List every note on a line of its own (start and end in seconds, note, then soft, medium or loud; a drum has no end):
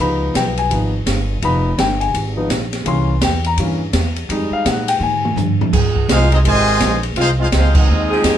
0.00 0.33 C#2 medium
0.00 0.69 F3 medium
0.00 0.70 B3 soft
0.00 0.70 D#4 medium
0.00 0.33 B5 medium
0.34 0.69 B1 medium
0.34 0.57 G5 medium
0.34 kick soft
0.34 snare medium
0.34 hi-hat pedal medium
0.34 ride medium
0.57 0.71 G#5 medium
0.57 ride medium
0.70 1.05 G#1 medium
0.70 0.91 F3 soft
0.70 0.91 B3 soft
0.70 0.91 D#4 soft
0.70 kick soft
0.70 ride medium
1.06 1.41 G1 medium
1.06 kick soft
1.06 snare medium
1.06 hi-hat pedal medium
1.06 ride medium
1.42 1.77 F1 medium
1.42 1.69 F3 medium
1.42 1.69 B3 soft
1.42 1.70 D#4 medium
1.42 1.77 B5 medium
1.42 kick soft
1.42 ride medium
1.78 2.13 G1 medium
1.78 2.01 G5 medium
1.78 kick soft
1.78 snare medium
1.78 hi-hat pedal medium
1.78 ride medium
2.01 2.13 G#5 medium
2.01 ride medium
2.14 2.49 G#1 medium
2.14 kick soft
2.14 ride medium
2.37 2.48 F3 soft
2.37 2.49 B3 soft
2.37 2.49 D#4 medium
2.50 2.85 A#1 medium
2.50 kick soft
2.50 snare medium
2.50 hi-hat pedal medium
2.50 ride medium
2.73 snare soft
2.73 ride medium
2.85 3.20 C2 medium
2.85 3.12 E3 medium
2.85 3.12 A#3 medium
2.85 3.13 C#4 medium
2.85 3.20 C6 medium
2.85 kick soft
2.85 ride medium
3.21 3.56 E2 loud
3.21 3.45 G5 medium
3.21 kick soft
3.21 snare medium
3.21 hi-hat pedal medium
3.21 ride medium
3.44 3.54 A#5 medium
3.44 ride medium
3.57 3.92 G2 medium
3.57 3.79 E3 soft
3.57 3.79 A#3 soft
3.57 3.79 C#4 soft
3.57 kick soft
3.57 ride medium
3.93 4.28 E2 loud
3.93 kick soft
3.93 snare medium
3.93 hi-hat pedal medium
3.93 ride medium
4.16 ride medium
4.29 4.49 F2 loud
4.29 4.85 G3 medium
4.29 4.85 G#3 soft
4.29 4.86 D#4 medium
4.29 kick soft
4.29 ride medium
4.50 4.65 F5 medium
4.50 muted upright bass stroke soft
4.65 4.99 A#2 medium
4.65 4.88 F#5 medium
4.65 kick soft
4.65 snare medium
4.65 hi-hat pedal medium
4.65 ride medium
4.88 5.01 G5 medium
4.88 ride medium
5.00 5.35 G#2 medium
5.00 5.36 G#5 medium
5.00 mid tom medium
5.25 mid tom medium
5.36 5.71 G2 medium
5.36 floor tom medium
5.36 hi-hat pedal medium
5.61 floor tom loud
5.73 5.94 F2 medium
5.73 6.27 F3 medium
5.73 6.27 C4 medium
5.73 6.27 D#4 medium
5.73 6.27 G#4 loud
5.73 kick medium
5.73 crash medium
5.95 muted upright bass stroke soft
5.95 kick medium
6.08 6.43 C2 loud
6.08 6.30 G#3 loud
6.08 6.30 C4 medium
6.08 6.31 D#4 medium
6.08 6.30 F4 medium
6.08 6.31 G#4 medium
6.08 6.31 C5 medium
6.08 6.31 F5 loud
6.08 snare medium
6.08 hi-hat pedal medium
6.08 ride medium
6.31 6.37 G#3 medium
6.31 6.37 C4 medium
6.31 6.39 C4 medium
6.31 6.38 D#4 medium
6.31 6.39 F4 medium
6.31 6.39 G#4 medium
6.31 6.39 D#5 medium
6.31 ride medium
6.44 6.79 G#1 medium
6.44 6.99 C3 loud
6.44 6.99 D#3 loud
6.44 6.99 G#3 loud
6.44 7.00 F4 loud
6.44 7.00 C5 loud
6.44 7.00 D#5 loud
6.44 7.00 G#5 loud
6.44 kick soft
6.44 ride medium
6.80 7.15 A#1 loud
6.80 kick soft
6.80 snare medium
6.80 hi-hat pedal medium
6.80 ride medium
7.03 ride medium
7.16 7.51 C2 medium
7.16 7.27 G#3 medium
7.16 7.27 C4 medium
7.16 7.29 D#4 medium
7.16 7.27 F4 loud
7.16 7.29 G#4 medium
7.16 7.29 C5 medium
7.16 7.29 F5 loud
7.16 kick soft
7.16 ride medium
7.39 7.45 G#3 medium
7.39 7.45 C4 medium
7.39 7.47 D#4 medium
7.39 7.45 F4 medium
7.39 7.48 G#4 medium
7.39 7.47 C5 medium
7.39 7.47 F5 medium
7.52 7.87 C#2 loud
7.52 7.73 G#3 medium
7.52 7.73 C4 medium
7.52 7.75 D#4 medium
7.52 7.73 F4 medium
7.52 7.75 G#4 medium
7.52 7.75 C5 medium
7.52 7.75 F5 loud
7.52 kick soft
7.52 snare medium
7.52 hi-hat pedal medium
7.52 ride medium
7.75 8.38 G#3 medium
7.75 8.38 C4 medium
7.75 8.38 D#4 medium
7.75 8.38 F4 medium
7.75 8.38 G#4 medium
7.75 8.38 D#5 loud
7.75 kick loud
7.75 crash medium
7.88 8.23 D#2 medium
8.09 8.38 F3 loud
8.09 8.38 C4 loud
8.09 8.38 D#4 loud
8.09 8.38 G#4 loud
8.24 8.38 F2 loud
8.24 kick soft
8.24 snare medium
8.24 hi-hat pedal medium
8.24 ride medium